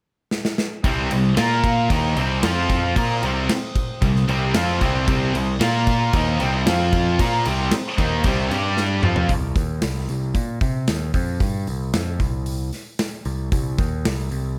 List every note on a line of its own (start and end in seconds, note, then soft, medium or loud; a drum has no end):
0.31 snare medium
0.45 snare medium
0.58 snare medium
0.82 1.09 C2 loud
0.82 1.10 C3 medium
0.82 1.10 G3 loud
0.82 1.10 C4 loud
0.82 1.36 C5 medium
0.82 1.36 G5 medium
0.82 1.36 D#6 medium
0.82 kick loud
0.82 crash medium
1.11 1.36 C2 medium
1.11 1.32 C3 medium
1.11 1.32 G3 medium
1.11 crash medium
1.37 1.87 A#2 loud
1.37 1.89 A#3 medium
1.37 1.89 F4 medium
1.37 1.90 A#4 medium
1.37 1.90 F5 medium
1.37 1.90 F6 medium
1.37 snare loud
1.37 crash medium
1.64 kick medium
1.64 crash medium
1.90 2.15 D#2 medium
1.90 2.16 D#3 medium
1.90 2.16 A#3 loud
1.90 2.16 D#4 loud
1.90 5.57 C5 medium
1.90 2.43 G5 medium
1.90 2.43 D#6 medium
1.90 kick loud
1.90 crash medium
2.16 2.41 C2 medium
2.16 2.42 C3 medium
2.16 2.42 G3 medium
2.16 2.42 C4 loud
2.16 crash medium
2.42 2.93 F2 medium
2.42 2.95 F3 medium
2.42 2.95 C4 medium
2.42 2.95 F4 loud
2.42 2.95 F5 medium
2.42 2.96 F6 medium
2.42 snare loud
2.42 crash medium
2.69 kick medium
2.69 crash medium
2.95 3.21 A#2 loud
2.95 3.21 A#3 loud
2.95 3.22 F4 medium
2.95 3.22 A#4 loud
2.95 5.58 G5 medium
2.95 5.58 D#6 medium
2.95 kick loud
2.95 crash medium
3.23 3.47 C2 medium
3.23 3.48 C3 medium
3.23 3.49 G3 loud
3.23 3.49 C4 loud
3.23 crash medium
3.49 snare loud
3.49 crash medium
3.75 kick medium
3.75 crash medium
4.02 4.27 C2 medium
4.02 4.23 C3 medium
4.02 4.23 G3 medium
4.02 kick medium
4.02 crash medium
4.16 snare soft
4.28 4.53 C2 medium
4.28 4.54 C3 medium
4.28 4.55 G3 medium
4.28 4.55 C4 loud
4.28 crash soft
4.54 4.80 F2 loud
4.54 4.81 F3 medium
4.54 4.81 C4 loud
4.54 4.81 F4 medium
4.54 snare loud
4.54 crash medium
4.81 5.06 C2 loud
4.81 5.07 C3 loud
4.81 5.07 G3 loud
4.81 5.07 C4 loud
4.81 kick medium
4.81 crash medium
5.08 5.32 C2 loud
5.08 5.33 C3 medium
5.08 5.33 G3 medium
5.08 5.34 C4 loud
5.08 kick loud
5.08 crash medium
5.34 5.59 C2 medium
5.34 5.55 C3 medium
5.34 5.55 G3 medium
5.34 crash medium
5.60 6.10 A#2 loud
5.60 6.12 A#3 medium
5.60 6.13 F4 loud
5.60 6.13 A#4 loud
5.60 6.14 A#4 medium
5.60 6.15 F5 medium
5.60 6.14 F6 medium
5.60 snare loud
5.60 crash medium
5.87 kick medium
5.87 crash medium
6.13 6.38 D#2 medium
6.13 6.39 D#3 medium
6.13 6.39 A#3 loud
6.13 6.39 D#4 loud
6.13 8.50 C5 medium
6.13 6.67 G5 medium
6.13 6.67 D#6 medium
6.13 kick loud
6.13 crash medium
6.40 6.65 C2 medium
6.40 6.66 C3 medium
6.40 6.66 G3 medium
6.40 6.65 C4 loud
6.40 crash medium
6.66 7.15 F2 medium
6.66 7.18 F3 loud
6.66 7.18 C4 medium
6.66 7.19 F4 loud
6.66 7.20 F5 medium
6.66 7.20 F6 medium
6.66 snare loud
6.66 crash medium
6.93 kick medium
6.93 crash medium
7.19 7.44 A#2 medium
7.19 7.45 A#3 loud
7.19 7.45 F4 loud
7.19 7.46 A#4 loud
7.19 8.50 G5 medium
7.19 8.50 D#6 medium
7.19 kick loud
7.19 crash medium
7.45 7.71 C2 medium
7.45 7.71 C3 medium
7.45 7.72 G3 loud
7.45 7.72 C4 loud
7.45 crash medium
7.71 snare loud
7.71 crash medium
7.97 8.23 D#2 medium
7.97 8.24 D#3 medium
7.97 8.24 A#3 medium
7.97 8.24 D#4 medium
7.97 kick medium
7.97 crash medium
8.24 8.49 C2 medium
8.24 8.51 C3 medium
8.24 8.50 G3 loud
8.24 8.51 C4 loud
8.24 kick loud
8.24 crash medium
8.51 9.00 G2 medium
8.51 9.03 G3 medium
8.51 9.04 D4 medium
8.51 9.04 G4 medium
8.51 9.31 G4 medium
8.51 9.04 D5 medium
8.51 9.04 D6 medium
8.51 crash medium
8.77 snare medium
9.02 9.28 F2 medium
9.02 9.29 F3 loud
9.02 9.30 C4 loud
9.02 9.30 F4 loud
9.02 9.31 D#5 medium
9.02 9.31 C6 medium
9.02 mid tom medium
9.16 floor tom medium
9.29 9.54 C2 medium
9.29 kick medium
9.29 open hi-hat medium
9.56 9.81 D#2 medium
9.56 kick loud
9.56 open hi-hat medium
9.82 10.08 C2 medium
9.82 snare loud
9.82 open hi-hat medium
10.09 10.34 C2 medium
10.09 open hi-hat soft
10.34 10.60 A#2 medium
10.34 kick medium
10.34 open hi-hat medium
10.61 10.87 C3 medium
10.61 kick loud
10.61 open hi-hat soft
10.88 11.13 D#2 medium
10.88 snare loud
10.88 open hi-hat medium
11.14 11.39 F2 medium
11.14 kick medium
11.14 open hi-hat medium
11.40 11.66 G2 medium
11.40 kick loud
11.40 open hi-hat medium
11.67 11.92 C2 medium
11.67 open hi-hat medium
11.94 12.19 F2 medium
11.94 snare loud
11.94 open hi-hat medium
12.20 12.70 C2 medium
12.20 kick medium
12.20 open hi-hat soft
12.46 open hi-hat medium
12.73 snare soft
12.73 open hi-hat medium
12.99 snare loud
12.99 open hi-hat medium
13.25 13.51 C2 medium
13.25 open hi-hat soft
13.52 13.77 C2 medium
13.52 kick loud
13.52 open hi-hat medium
13.78 14.04 D#2 medium
13.78 kick loud
13.78 open hi-hat soft
14.05 14.30 C2 medium
14.05 snare loud
14.05 open hi-hat medium
14.31 14.56 C2 medium
14.31 open hi-hat soft